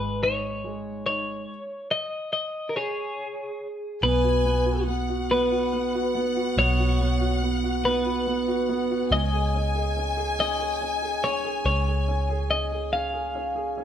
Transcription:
Already playing: G#1 G#3 D#4 B4
0.22 D#4 C#5
0.64 G#3
1.06 D#4 C#5
1.91 D#5
2.33 D#5
2.69 A#4
2.76 G#4 C#5
4.02 B1 B3 B4 G#5
4.24 F#4
4.45 B3
4.66 F#4
4.87 B3 F#5
5.09 F#4
5.31 B3 B4
5.52 F#4
5.73 B3
5.95 F#4
6.15 B3
6.37 F#4
6.57 B1 B3 C#5
6.79 F#4
7.00 B3
7.21 F#4
7.43 B3
7.64 F#4
7.84 B3 B4
8.06 F#4
8.27 B3
8.48 F#4
8.69 B3
8.91 F#4
9.11 C#2 C#4 D#5 G#5
9.33 G#4
9.55 C#4
9.75 G#4
9.97 C#4
10.17 G#4
10.39 C#4 D#5
10.60 G#4
10.82 C#4
11.02 G#4
11.23 C#4 C#5
11.45 G#4
11.65 C#2 C#4 C#5
11.88 G#4
12.08 C#4
12.30 G#4
12.51 C#4 D#5
12.72 G#4
12.92 C#4 F5
13.14 G#4
13.35 C#4
13.55 G#4
13.77 C#4

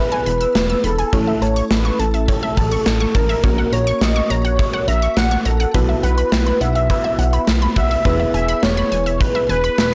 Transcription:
Already playing: B3 E4 G#4 B4 E5
0.12 G#5
0.26 E1 B5, closed hi-hat
0.41 E6, closed hi-hat
0.55 E1 E7, snare, closed hi-hat
0.70 E6
0.84 E1 A4 B5, closed hi-hat
0.98 G#5, closed hi-hat
1.13 A1 A3 C#4 E4 A4 C#5, kick, closed hi-hat
1.27 E5
1.42 A1 C#5 A5, closed hi-hat
1.56 C#6, closed hi-hat
1.71 A1 B4 C#7, snare, closed hi-hat
1.85 C#6
1.99 A1 A4 A5, closed hi-hat
2.14 E5, closed hi-hat
2.28 C#5, kick, closed hi-hat
2.43 E5
2.57 A1 A5, kick, closed hi-hat
2.71 C#6, closed hi-hat
2.86 A1 C#7, snare, closed hi-hat
3.00 C#6
3.15 A1 A#4 A5, kick, closed hi-hat
3.29 E5, closed hi-hat
3.44 A#1 A#3 C#4 F#4 A#4 C#5, kick, closed hi-hat
3.58 F#5
3.72 A#1 C#5 A#5, closed hi-hat
3.87 C#6, closed hi-hat
4.01 A#1 D#5 C#7, snare, closed hi-hat
4.16 C#6
4.30 A#1 C#5 A#5, closed hi-hat
4.45 F#5, closed hi-hat
4.59 C#5, kick, closed hi-hat
4.73 F#5
4.88 A#1 E5 A#5, closed hi-hat
5.02 C#6, closed hi-hat
5.17 A#1 F#5 C#7, snare, closed hi-hat
5.31 C#6
5.45 A#1 A4 A#5, closed hi-hat
5.60 F#5, closed hi-hat
5.74 B1 B3 E4 F#4 B4, kick, closed hi-hat
5.89 E5
6.03 B1 B4 F#5, closed hi-hat
6.18 B5, closed hi-hat
6.32 B1 B4 B6, snare, closed hi-hat
6.47 B5
6.61 B1 E5 F#5, closed hi-hat
6.75 E5, closed hi-hat
6.90 B4, kick, closed hi-hat
7.04 E5
7.19 B1 F#5, closed hi-hat
7.33 B5, closed hi-hat
7.47 B1 B6, snare, closed hi-hat
7.62 B5
7.76 B1 E5 F#5, kick, closed hi-hat
7.91 E5, closed hi-hat
8.05 E1 B3 E4 G#4 B4, kick, closed hi-hat
8.20 E5
8.34 E1 E5 G#5, closed hi-hat
8.48 B5, closed hi-hat
8.63 E1 C#5 B6, snare, closed hi-hat
8.77 B5
8.92 E1 G#5, closed hi-hat
9.06 E5, closed hi-hat
9.20 B4, kick, closed hi-hat
9.35 E5
9.49 E1 B4 G#5, closed hi-hat
9.64 B5, closed hi-hat
9.78 E1 B6, snare, closed hi-hat

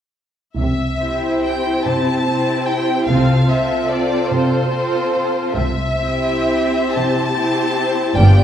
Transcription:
0.57 C2 C3 E5
1.01 C4 E4 G4 C5
1.43 G5
1.84 C3 A5
2.26 C4 E4 G4 C5
2.67 G5
3.08 C2 C3 C4 F4 A4 C5 F5
3.50 C4 F4 A4 C5 E5
3.90 D5
4.30 C3 C5
4.71 C4 F4 A4 C5
5.55 C2 C3 E5
5.99 C4 E4 G4 C5
6.93 C3 A5
7.35 C4 E4 G4 C5
8.16 G1 G2 B3 F4 G4 D5 G5

